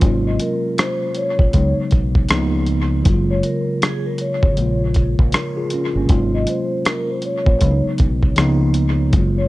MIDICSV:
0, 0, Header, 1, 6, 480
1, 0, Start_track
1, 0, Tempo, 759494
1, 11, Time_signature, 4, 2, 24, 8
1, 5992, End_track
2, 0, Start_track
2, 0, Title_t, "Vibraphone"
2, 0, Program_c, 0, 11
2, 171, Note_on_c, 0, 75, 61
2, 249, Note_off_c, 0, 75, 0
2, 263, Note_on_c, 0, 70, 66
2, 474, Note_off_c, 0, 70, 0
2, 500, Note_on_c, 0, 72, 69
2, 629, Note_off_c, 0, 72, 0
2, 647, Note_on_c, 0, 72, 66
2, 736, Note_off_c, 0, 72, 0
2, 738, Note_on_c, 0, 73, 79
2, 1099, Note_off_c, 0, 73, 0
2, 2089, Note_on_c, 0, 73, 70
2, 2168, Note_off_c, 0, 73, 0
2, 2182, Note_on_c, 0, 70, 58
2, 2393, Note_off_c, 0, 70, 0
2, 2423, Note_on_c, 0, 68, 80
2, 2550, Note_off_c, 0, 68, 0
2, 2568, Note_on_c, 0, 70, 57
2, 2647, Note_off_c, 0, 70, 0
2, 2662, Note_on_c, 0, 73, 72
2, 3021, Note_off_c, 0, 73, 0
2, 4010, Note_on_c, 0, 75, 62
2, 4088, Note_off_c, 0, 75, 0
2, 4104, Note_on_c, 0, 72, 65
2, 4315, Note_off_c, 0, 72, 0
2, 4343, Note_on_c, 0, 70, 70
2, 4471, Note_off_c, 0, 70, 0
2, 4489, Note_on_c, 0, 72, 63
2, 4568, Note_off_c, 0, 72, 0
2, 4584, Note_on_c, 0, 73, 73
2, 4942, Note_off_c, 0, 73, 0
2, 5928, Note_on_c, 0, 73, 67
2, 5992, Note_off_c, 0, 73, 0
2, 5992, End_track
3, 0, Start_track
3, 0, Title_t, "Tine electric piano"
3, 0, Program_c, 1, 4
3, 0, Control_c, 1, 64, 127
3, 0, Note_on_c, 1, 48, 61
3, 0, Note_on_c, 1, 54, 57
3, 0, Note_on_c, 1, 61, 68
3, 9, Note_on_c, 1, 56, 53
3, 19, Control_c, 1, 64, 0
3, 20, Note_on_c, 1, 58, 55
3, 33, Note_on_c, 1, 65, 69
3, 140, Control_c, 1, 64, 127
3, 147, Note_off_c, 1, 61, 0
3, 939, Note_off_c, 1, 48, 0
3, 945, Note_off_c, 1, 54, 0
3, 951, Note_off_c, 1, 56, 0
3, 957, Note_off_c, 1, 58, 0
3, 963, Note_off_c, 1, 65, 0
3, 969, Note_on_c, 1, 49, 55
3, 975, Note_on_c, 1, 54, 48
3, 981, Control_c, 1, 64, 0
3, 981, Note_on_c, 1, 56, 52
3, 987, Note_on_c, 1, 59, 43
3, 993, Note_on_c, 1, 63, 54
3, 1100, Control_c, 1, 64, 127
3, 1446, Note_off_c, 1, 49, 0
3, 1453, Note_off_c, 1, 54, 0
3, 1454, Note_on_c, 1, 49, 75
3, 1456, Note_off_c, 1, 56, 0
3, 1458, Control_c, 1, 64, 0
3, 1458, Note_on_c, 1, 53, 74
3, 1459, Note_off_c, 1, 59, 0
3, 1462, Note_off_c, 1, 63, 0
3, 1466, Note_on_c, 1, 58, 68
3, 1471, Note_on_c, 1, 59, 73
3, 1478, Note_on_c, 1, 63, 75
3, 1565, Control_c, 1, 64, 127
3, 1900, Note_off_c, 1, 49, 0
3, 1908, Note_on_c, 1, 49, 59
3, 1920, Note_on_c, 1, 54, 58
3, 1932, Note_on_c, 1, 56, 54
3, 1935, Note_off_c, 1, 53, 0
3, 1937, Note_off_c, 1, 58, 0
3, 1941, Note_off_c, 1, 59, 0
3, 1941, Control_c, 1, 64, 0
3, 1944, Note_on_c, 1, 58, 51
3, 1945, Note_off_c, 1, 63, 0
3, 1957, Note_on_c, 1, 65, 70
3, 2044, Control_c, 1, 64, 127
3, 2860, Note_off_c, 1, 49, 0
3, 2866, Note_off_c, 1, 54, 0
3, 2870, Note_on_c, 1, 49, 55
3, 2873, Note_off_c, 1, 56, 0
3, 2879, Note_off_c, 1, 58, 0
3, 2881, Note_on_c, 1, 53, 45
3, 2885, Note_off_c, 1, 65, 0
3, 2894, Note_on_c, 1, 56, 46
3, 2899, Control_c, 1, 64, 0
3, 2907, Note_on_c, 1, 58, 47
3, 2919, Note_on_c, 1, 65, 65
3, 3022, Control_c, 1, 64, 127
3, 3134, Note_off_c, 1, 58, 0
3, 3141, Note_off_c, 1, 65, 0
3, 3385, Note_on_c, 1, 70, 63
3, 3518, Note_on_c, 1, 68, 65
3, 3519, Note_off_c, 1, 70, 0
3, 3521, Note_on_c, 1, 65, 54
3, 3606, Note_off_c, 1, 68, 0
3, 3608, Note_off_c, 1, 65, 0
3, 3623, Note_on_c, 1, 65, 64
3, 3628, Note_on_c, 1, 61, 57
3, 3758, Note_off_c, 1, 65, 0
3, 3760, Note_off_c, 1, 61, 0
3, 3776, Note_on_c, 1, 61, 67
3, 3779, Note_on_c, 1, 58, 51
3, 3821, Note_off_c, 1, 49, 0
3, 3822, Note_on_c, 1, 48, 59
3, 3827, Note_off_c, 1, 53, 0
3, 3833, Note_on_c, 1, 54, 50
3, 3834, Note_off_c, 1, 56, 0
3, 3846, Note_on_c, 1, 56, 53
3, 3850, Note_off_c, 1, 58, 0
3, 3857, Note_on_c, 1, 58, 54
3, 3860, Control_c, 1, 64, 0
3, 3870, Note_on_c, 1, 65, 71
3, 3981, Control_c, 1, 64, 127
3, 3996, Note_off_c, 1, 61, 0
3, 4777, Note_off_c, 1, 48, 0
3, 4783, Note_off_c, 1, 54, 0
3, 4790, Note_off_c, 1, 56, 0
3, 4795, Note_off_c, 1, 58, 0
3, 4802, Note_off_c, 1, 65, 0
3, 4803, Note_on_c, 1, 49, 56
3, 4809, Note_on_c, 1, 54, 48
3, 4815, Note_on_c, 1, 56, 46
3, 4819, Control_c, 1, 64, 0
3, 4821, Note_on_c, 1, 59, 47
3, 4826, Note_on_c, 1, 62, 43
3, 4869, Note_off_c, 1, 62, 0
3, 4869, Note_on_c, 1, 63, 59
3, 4914, Control_c, 1, 64, 127
3, 5278, Note_off_c, 1, 49, 0
3, 5285, Note_on_c, 1, 49, 80
3, 5290, Note_off_c, 1, 54, 0
3, 5291, Note_on_c, 1, 53, 76
3, 5293, Note_off_c, 1, 56, 0
3, 5296, Note_off_c, 1, 59, 0
3, 5297, Note_on_c, 1, 58, 73
3, 5300, Control_c, 1, 64, 0
3, 5302, Note_off_c, 1, 63, 0
3, 5303, Note_on_c, 1, 59, 70
3, 5310, Note_on_c, 1, 63, 83
3, 5414, Control_c, 1, 64, 127
3, 5746, Note_off_c, 1, 49, 0
3, 5753, Note_on_c, 1, 49, 58
3, 5766, Note_on_c, 1, 54, 60
3, 5771, Note_off_c, 1, 53, 0
3, 5774, Note_off_c, 1, 58, 0
3, 5777, Note_off_c, 1, 59, 0
3, 5778, Note_on_c, 1, 56, 59
3, 5779, Control_c, 1, 64, 0
3, 5781, Note_off_c, 1, 63, 0
3, 5790, Note_on_c, 1, 58, 55
3, 5802, Note_on_c, 1, 65, 60
3, 5891, Control_c, 1, 64, 127
3, 5992, Note_off_c, 1, 49, 0
3, 5992, Note_off_c, 1, 54, 0
3, 5992, Note_off_c, 1, 56, 0
3, 5992, Note_off_c, 1, 58, 0
3, 5992, Note_off_c, 1, 65, 0
3, 5992, End_track
4, 0, Start_track
4, 0, Title_t, "Fingered electric bass"
4, 0, Program_c, 2, 33
4, 14, Note_on_c, 2, 32, 99
4, 233, Note_off_c, 2, 32, 0
4, 881, Note_on_c, 2, 34, 81
4, 965, Note_off_c, 2, 34, 0
4, 976, Note_on_c, 2, 37, 95
4, 1109, Note_off_c, 2, 37, 0
4, 1218, Note_on_c, 2, 35, 71
4, 1436, Note_off_c, 2, 35, 0
4, 1459, Note_on_c, 2, 37, 92
4, 1910, Note_off_c, 2, 37, 0
4, 1935, Note_on_c, 2, 30, 90
4, 2154, Note_off_c, 2, 30, 0
4, 2801, Note_on_c, 2, 32, 83
4, 2885, Note_off_c, 2, 32, 0
4, 2899, Note_on_c, 2, 34, 108
4, 3257, Note_off_c, 2, 34, 0
4, 3282, Note_on_c, 2, 34, 82
4, 3366, Note_off_c, 2, 34, 0
4, 3764, Note_on_c, 2, 31, 73
4, 3847, Note_off_c, 2, 31, 0
4, 3855, Note_on_c, 2, 32, 99
4, 4074, Note_off_c, 2, 32, 0
4, 4720, Note_on_c, 2, 34, 89
4, 4805, Note_off_c, 2, 34, 0
4, 4816, Note_on_c, 2, 37, 104
4, 4949, Note_off_c, 2, 37, 0
4, 5058, Note_on_c, 2, 35, 73
4, 5275, Note_off_c, 2, 35, 0
4, 5298, Note_on_c, 2, 37, 96
4, 5750, Note_off_c, 2, 37, 0
4, 5774, Note_on_c, 2, 30, 99
4, 5992, Note_off_c, 2, 30, 0
4, 5992, End_track
5, 0, Start_track
5, 0, Title_t, "Muted fingered electric bass strokes"
5, 1125, Note_on_c, 9, 29, 42
5, 1188, Note_off_c, 9, 29, 0
5, 4966, Note_on_c, 9, 29, 44
5, 5029, Note_off_c, 9, 29, 0
5, 5992, End_track
6, 0, Start_track
6, 0, Title_t, "Drums"
6, 8, Note_on_c, 9, 42, 80
6, 11, Note_on_c, 9, 36, 112
6, 71, Note_off_c, 9, 42, 0
6, 74, Note_off_c, 9, 36, 0
6, 249, Note_on_c, 9, 42, 65
6, 312, Note_off_c, 9, 42, 0
6, 493, Note_on_c, 9, 42, 85
6, 500, Note_on_c, 9, 37, 112
6, 557, Note_off_c, 9, 42, 0
6, 563, Note_off_c, 9, 37, 0
6, 723, Note_on_c, 9, 42, 65
6, 786, Note_off_c, 9, 42, 0
6, 878, Note_on_c, 9, 36, 96
6, 941, Note_off_c, 9, 36, 0
6, 968, Note_on_c, 9, 42, 66
6, 974, Note_on_c, 9, 36, 81
6, 1031, Note_off_c, 9, 42, 0
6, 1037, Note_off_c, 9, 36, 0
6, 1205, Note_on_c, 9, 42, 55
6, 1216, Note_on_c, 9, 36, 82
6, 1269, Note_off_c, 9, 42, 0
6, 1279, Note_off_c, 9, 36, 0
6, 1359, Note_on_c, 9, 36, 78
6, 1423, Note_off_c, 9, 36, 0
6, 1444, Note_on_c, 9, 42, 73
6, 1457, Note_on_c, 9, 37, 116
6, 1508, Note_off_c, 9, 42, 0
6, 1520, Note_off_c, 9, 37, 0
6, 1684, Note_on_c, 9, 42, 57
6, 1747, Note_off_c, 9, 42, 0
6, 1929, Note_on_c, 9, 42, 73
6, 1932, Note_on_c, 9, 36, 117
6, 1992, Note_off_c, 9, 42, 0
6, 1995, Note_off_c, 9, 36, 0
6, 2169, Note_on_c, 9, 42, 64
6, 2233, Note_off_c, 9, 42, 0
6, 2415, Note_on_c, 9, 42, 74
6, 2421, Note_on_c, 9, 37, 107
6, 2478, Note_off_c, 9, 42, 0
6, 2484, Note_off_c, 9, 37, 0
6, 2643, Note_on_c, 9, 42, 62
6, 2706, Note_off_c, 9, 42, 0
6, 2798, Note_on_c, 9, 36, 93
6, 2861, Note_off_c, 9, 36, 0
6, 2888, Note_on_c, 9, 42, 63
6, 2951, Note_off_c, 9, 42, 0
6, 3124, Note_on_c, 9, 42, 57
6, 3136, Note_on_c, 9, 36, 73
6, 3188, Note_off_c, 9, 42, 0
6, 3199, Note_off_c, 9, 36, 0
6, 3280, Note_on_c, 9, 36, 81
6, 3343, Note_off_c, 9, 36, 0
6, 3364, Note_on_c, 9, 42, 77
6, 3377, Note_on_c, 9, 37, 113
6, 3427, Note_off_c, 9, 42, 0
6, 3440, Note_off_c, 9, 37, 0
6, 3605, Note_on_c, 9, 42, 62
6, 3668, Note_off_c, 9, 42, 0
6, 3849, Note_on_c, 9, 42, 79
6, 3852, Note_on_c, 9, 36, 117
6, 3912, Note_off_c, 9, 42, 0
6, 3915, Note_off_c, 9, 36, 0
6, 4088, Note_on_c, 9, 42, 63
6, 4151, Note_off_c, 9, 42, 0
6, 4332, Note_on_c, 9, 42, 81
6, 4338, Note_on_c, 9, 37, 113
6, 4395, Note_off_c, 9, 42, 0
6, 4401, Note_off_c, 9, 37, 0
6, 4563, Note_on_c, 9, 42, 63
6, 4626, Note_off_c, 9, 42, 0
6, 4717, Note_on_c, 9, 36, 94
6, 4781, Note_off_c, 9, 36, 0
6, 4807, Note_on_c, 9, 42, 66
6, 4813, Note_on_c, 9, 36, 73
6, 4871, Note_off_c, 9, 42, 0
6, 4876, Note_off_c, 9, 36, 0
6, 5044, Note_on_c, 9, 42, 57
6, 5055, Note_on_c, 9, 36, 80
6, 5107, Note_off_c, 9, 42, 0
6, 5118, Note_off_c, 9, 36, 0
6, 5199, Note_on_c, 9, 36, 74
6, 5262, Note_off_c, 9, 36, 0
6, 5284, Note_on_c, 9, 42, 67
6, 5296, Note_on_c, 9, 37, 102
6, 5347, Note_off_c, 9, 42, 0
6, 5360, Note_off_c, 9, 37, 0
6, 5524, Note_on_c, 9, 42, 63
6, 5587, Note_off_c, 9, 42, 0
6, 5769, Note_on_c, 9, 42, 73
6, 5771, Note_on_c, 9, 36, 115
6, 5832, Note_off_c, 9, 42, 0
6, 5835, Note_off_c, 9, 36, 0
6, 5992, End_track
0, 0, End_of_file